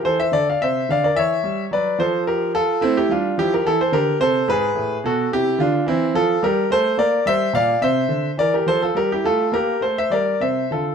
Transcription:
0.03 E3 A4 C5
0.20 C5 E5
0.32 D3 A4 D5
0.50 D5 F5
0.61 C3 C5 E5
0.89 D3 D5 F5
1.04 A#4 D5
1.15 E3 C#5 E5
1.44 G3
1.71 F#3 B4 D5
1.99 F3 A4 C5
2.27 G4 A#4
2.55 F4 A4
2.81 A3 C4 E4
2.97 E4 G4
3.09 G3 D4 F4
3.38 F3 E4 G4
3.54 G4 A#4
3.65 E3 E4 A4
3.81 A4 C5
3.92 D3 G4 A#4
4.20 C3 A4 C5
4.48 G#2 G#4 B4
4.75 A2
5.04 B2 F#4 A4
5.32 C3 E4 G4
5.58 D3 D4 F4
5.86 E3 C4 E4
6.14 F3 F4 A4
6.43 G3 G4 A#4
6.70 A3 A4 C5
6.98 A#3 A#4 D5
7.26 G3 C5 E5
7.53 A#2 D5 F5
7.81 C3 C5 E5
8.09 D3
8.37 E3 A#4 D5
8.54 G4 A#4
8.66 F3 A4 C5
8.83 F4 A4
8.95 G3 G4 A#4
9.12 E4 G4
9.24 A3 F4 A4
9.52 A#3 G4 A#4
9.81 A3 A4 C5
9.98 C5 E5
10.10 G3 A#4 D5
10.40 C3 C5 E5
10.71 D3 F4 A4

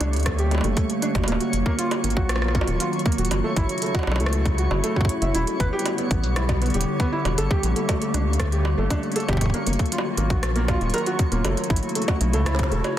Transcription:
Already playing: D3 G3 A3 A#3 C#4 G4 C#5
0.01 C#2 D4, closed hi-hat
0.13 D2, closed hi-hat
0.16 closed hi-hat
0.20 closed hi-hat
0.23 cross-stick, closed hi-hat
0.26 A3, kick, closed hi-hat
0.39 G4, closed hi-hat
0.51 closed hi-hat, high bongo
0.55 high bongo
0.58 high bongo
0.61 G1 A3, closed hi-hat, high bongo
0.77 A3, kick, closed hi-hat
0.90 closed hi-hat
1.02 D4, closed hi-hat
1.15 G1, kick, closed hi-hat, high bongo
1.24 high bongo
1.28 D#1 D#3 F#3 A#3 F4 F#4, closed hi-hat
1.32 high bongo
1.41 F#4, closed hi-hat
1.53 F#1, closed hi-hat
1.66 A#3, kick
1.79 F4, closed hi-hat
1.91 closed hi-hat, high bongo
2.04 G#1 A#3, closed hi-hat
2.10 closed hi-hat
2.17 A#1 F#4, kick
2.29 cross-stick, closed hi-hat
2.36 cross-stick
2.42 A#3, cross-stick
2.48 cross-stick
2.55 A#3, kick, closed hi-hat
2.61 high bongo
2.68 D#1, closed hi-hat
2.80 F4, closed hi-hat
2.93 closed hi-hat
2.99 closed hi-hat
3.06 A#3, kick, closed hi-hat
3.12 closed hi-hat
3.18 D#1 F#4, closed hi-hat
3.25 closed hi-hat
3.31 F#1 C#3 A3 E4, closed hi-hat, high bongo
3.44 A3
3.56 A1 E4, kick, closed hi-hat
3.69 closed hi-hat
3.78 closed hi-hat
3.82 A3, closed hi-hat
3.86 closed hi-hat
3.95 F#4, kick, closed hi-hat, high bongo
3.99 high bongo
4.03 high bongo
4.07 B1, high bongo
4.12 high bongo
4.16 high bongo
4.20 C#2 A3, closed hi-hat
4.26 cross-stick
4.33 A3, closed hi-hat
4.46 kick, closed hi-hat
4.58 F#4, closed hi-hat
4.71 F#1, high bongo
4.84 A3, closed hi-hat
4.96 F#4, kick
5.01 kick
5.05 kick
5.09 closed hi-hat
5.22 F#1 E5, closed hi-hat
5.34 E1 D3 G3 B3 E4 G4, closed hi-hat
5.47 closed hi-hat
5.60 G1 B4, kick, closed hi-hat
5.73 G4
5.79 closed hi-hat
5.86 closed hi-hat, high bongo
5.98 B3, closed hi-hat
6.11 A1 B3, kick, closed hi-hat
6.23 B1, closed hi-hat
6.36 E4, cross-stick, closed hi-hat
6.49 kick, closed hi-hat, high bongo
6.62 B3, closed hi-hat
6.66 closed hi-hat
6.70 closed hi-hat
6.74 E1 G4, closed hi-hat
6.81 closed hi-hat
7.00 B3, kick, closed hi-hat
7.12 E4
7.25 E1, closed hi-hat, high bongo
7.38 G1 A3 A#3 A4, closed hi-hat
7.51 G4, kick
7.63 A#1, closed hi-hat
7.76 A3, closed hi-hat
7.89 A3, kick, closed hi-hat, high bongo
8.02 closed hi-hat
8.14 C#2 D4, closed hi-hat
8.27 D2
8.33 closed hi-hat
8.40 A3, kick, cross-stick, closed hi-hat
8.52 G4, closed hi-hat
8.65 high bongo
8.78 G1 A3
8.90 D4, kick, closed hi-hat
9.03 closed hi-hat
9.12 closed hi-hat
9.16 A4, closed hi-hat
9.20 closed hi-hat
9.29 G1 G4, kick, closed hi-hat, high bongo
9.33 kick
9.37 kick
9.41 D#1 D#3 F#3 F4 F#4, kick, closed hi-hat
9.45 kick
9.50 kick
9.54 A#3, closed hi-hat
9.67 F#1 A#3, closed hi-hat
9.73 closed hi-hat
9.79 kick, closed hi-hat
9.86 closed hi-hat
9.92 F4, closed hi-hat
9.98 high bongo
10.17 G#1 A#3, closed hi-hat
10.30 A#1 F#4, kick, closed hi-hat
10.43 cross-stick, closed hi-hat
10.56 A#3, closed hi-hat
10.68 F4, kick, closed hi-hat, high bongo
10.81 D#1, closed hi-hat
10.90 closed hi-hat
10.94 A#4, closed hi-hat
10.98 closed hi-hat
11.06 F#4, closed hi-hat
11.19 kick, closed hi-hat
11.32 D#1 A#3, closed hi-hat
11.44 F#1 C#3 A3 E4 F#4, closed hi-hat, high bongo
11.57 closed hi-hat
11.64 closed hi-hat
11.70 A1 E4, kick, closed hi-hat
11.76 closed hi-hat
11.83 closed hi-hat
11.89 closed hi-hat
11.95 A3, closed hi-hat
12.02 closed hi-hat
12.08 F#4, kick, closed hi-hat, high bongo
12.21 B1, closed hi-hat
12.33 C#2 A3, closed hi-hat
12.46 E4, cross-stick, snare, closed hi-hat
12.55 snare
12.59 kick, closed hi-hat
12.63 snare
12.72 E1 A4, closed hi-hat
12.84 C#5, closed hi-hat, high bongo

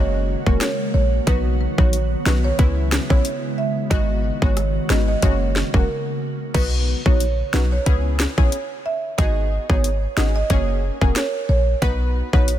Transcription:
Already playing: F#1 C#3 G#3 A#3 C#4 F#4
0.46 E1 G#3 A#3 C#4 F#4 A#4, kick
0.61 C#5, snare, closed hi-hat
0.94 A#1 C#5
1.27 B1 D#3 F#3 B3 D#4 F#4 B4, kick, closed hi-hat
1.78 A#1 F#3 B3 D#4 F#4 C#5, kick
1.93 closed hi-hat
2.26 B1 F#3 B3 D#4 F#4 B4, snare
2.44 C#5
2.59 C#2 C#3 G#3 B3 C#4 E4 B4, kick, closed hi-hat
2.92 snare
3.10 A#1 G#3 B3 C#4 E4 C#5, kick
3.25 closed hi-hat
3.58 E5
3.90 G#1 D#3 G#3 B3 D#4 F#4 D#5, kick, closed hi-hat
4.42 G#1 G#3 B3 D#4 F#4 C#5, kick
4.57 cross-stick, closed hi-hat
4.90 G#1 G#3 B3 D#4 F#4 D#5, snare
5.08 D#5
5.22 F#1 C#3 G#3 A#3 C#4 F#4 C#5, kick, closed hi-hat
5.56 snare
5.74 E1 G#3 A#3 C#4 F#4 A#4, kick
6.54 B1 F#3 B3 D#4 F#4 B4, kick, closed hi-hat, crash
7.06 A#1 F#3 B3 D#4 F#4 C#5, kick
7.20 closed hi-hat
7.53 B1 F#3 B3 D#4 F#4 B4, snare
7.72 C#5
7.86 C#2 B3 C#4 E4 G#4 B4, kick, closed hi-hat
8.20 snare
8.38 A#1 B3 C#4 E4 G#4 C#5, kick
8.52 closed hi-hat
8.86 E5
9.18 G#1 B3 D#4 F#4 G#4 D#5, kick, closed hi-hat
9.70 G#1 B3 D#4 F#4 G#4 C#5, kick
9.84 closed hi-hat
10.17 G#1 B3 D#4 F#4 G#4 D#5, snare
10.36 D#5
10.50 F#1 A#3 C#4 F#4 G#4 C#5, kick, closed hi-hat
11.01 E1 A#3 C#4 F#4 G#4 A#4, kick
11.16 C#5, snare, closed hi-hat
11.49 A#1 C#5
11.82 B1 B3 D#4 F#4 B4, kick, closed hi-hat
12.33 A#1 B3 D#4 F#4 B4 C#5, kick
12.48 closed hi-hat

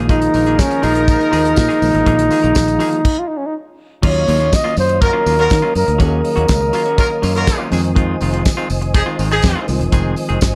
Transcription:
Already playing: A#1 D#3 F3 G#3 A#3 F4 G#4 F5 A#5 D#6
0.09 F3 A#3 D#4 G#4 A#4, kick, closed hi-hat, tambourine
0.22 muted clean electric guitar stroke, closed hi-hat
0.34 A#1 F3 A#3 D#4 A#4, open hi-hat, tambourine
0.46 F3 A#3 D#4 G#4, closed hi-hat
0.59 C#4, kick, snare, tambourine
0.71 muted clean electric guitar stroke, closed hi-hat
0.82 A#1 F3 A#3 D#4 G#4, open hi-hat, tambourine
0.95 muted clean electric guitar stroke, closed hi-hat
1.08 kick, closed hi-hat, tambourine
1.19 muted clean electric guitar stroke, closed hi-hat
1.31 D#2 F3 A#3 D#4 G#4, open hi-hat, tambourine
1.44 muted clean electric guitar stroke, closed hi-hat
1.56 A#2, muted clean electric guitar stroke, kick, snare, tambourine
1.68 F3 A#3 D#4 G#4, closed hi-hat
1.80 A#1 D3 F3 G#3 A#3 F4, open hi-hat, tambourine
1.86 D#3
1.93 A1, muted clean electric guitar stroke, closed hi-hat
2.06 A#1 F3 A#3 D#4 G#4, kick, closed hi-hat
2.18 muted clean electric guitar stroke, closed hi-hat
2.30 F3 A#3 D#4 G#4, open hi-hat, tambourine
2.43 A#1 F3 A#3 D#4 A#4, closed hi-hat
2.55 A#1, kick, snare, tambourine
2.68 muted clean electric guitar stroke, closed hi-hat
2.79 F3 A#3 D#4 G#4, open hi-hat, tambourine
2.92 muted clean electric guitar stroke, closed hi-hat
3.05 kick, crash
3.19 F4
3.28 D#4
3.37 C#4
3.46 D#4
4.02 D#2 D#3 F#3 A#3 C#4 F4 C#5 D#5 F5 D#6, kick, crash, tambourine
4.27 D#2 F#3 A#3 C#4 F4, open hi-hat, tambourine
4.40 F#3 A#3 C#4 F4, closed hi-hat
4.53 D#5, kick, snare, closed hi-hat, tambourine
4.64 F#3 A#3 C#4 F4
4.77 F#2 C5, open hi-hat, tambourine
4.89 muted clean electric guitar stroke, closed hi-hat
5.02 F#3 F4 A#4, muted clean electric guitar stroke, kick, closed hi-hat, tambourine
5.13 F#3 A#3 C#4 F4
5.25 D#2 F#3 A#3 C#4 F4, open hi-hat, tambourine
5.38 F#3 F4 A#4, muted clean electric guitar stroke, closed hi-hat
5.50 D#3, muted clean electric guitar stroke, kick, snare, closed hi-hat, tambourine
5.62 F#3 A#3 C#4 F4
5.75 F#2 A#4, open hi-hat, tambourine
5.87 D2, muted clean electric guitar stroke, closed hi-hat
5.98 D#2 D#3 F#3 A#3 C#4 F#4 G#4 A#4, kick, closed hi-hat, tambourine
6.25 open hi-hat
6.36 D#2 F#3 A#3 C#4 F#4, closed hi-hat
6.48 C#2, muted clean electric guitar stroke, kick, snare, closed hi-hat, tambourine
6.61 muted clean electric guitar stroke
6.73 F#3 A#3 C#4 F4, open hi-hat, tambourine
6.85 F#3 A#3 C#4 F#4, closed hi-hat
6.98 F#3 F4 A#4, kick, closed hi-hat, tambourine
7.10 muted clean electric guitar stroke
7.22 F#2 F#3 A#3 C#4 F4, open hi-hat, tambourine
7.35 F#3 F4 A#4, muted clean electric guitar stroke, closed hi-hat
7.47 kick, snare, closed hi-hat, tambourine
7.59 F#3 A#3 C#4 F4
7.70 F2 D#3 F3 G#3 C4 F4 G#4 C5 G#5, open hi-hat, tambourine
7.84 muted clean electric guitar stroke, closed hi-hat
7.95 D#3 G#3 C4 F4, kick, closed hi-hat
8.21 F1 D#3 G#3 C4 F4, open hi-hat, tambourine
8.33 D#3 G#3 C4 F4, closed hi-hat
8.45 muted clean electric guitar stroke, kick, snare, closed hi-hat, tambourine
8.57 D#3 G#3 C4 F4
8.70 F1, muted clean electric guitar stroke, open hi-hat, tambourine
8.81 muted clean electric guitar stroke, closed hi-hat
8.94 F3 D#4 G#4, muted clean electric guitar stroke, kick, closed hi-hat, tambourine
9.06 D#3 G#3 C4 F4
9.18 G#1 D#3 G#3 C4 F4, open hi-hat, tambourine
9.31 F3 D#4 G#4, muted clean electric guitar stroke, closed hi-hat
9.42 F2, muted clean electric guitar stroke, kick, snare, closed hi-hat, tambourine
9.55 D#3 G#3 C4 F4
9.67 C2 D#3 F3 G#3 C4 F4, muted clean electric guitar stroke, open hi-hat, tambourine
9.80 E1, muted clean electric guitar stroke, closed hi-hat
9.92 F1 D#3 G#3 C4 G#4, kick, closed hi-hat, tambourine
10.16 open hi-hat, tambourine
10.29 F1 D#3 G#3 C4 G#4, closed hi-hat
10.41 G#1, kick, snare, closed hi-hat, tambourine

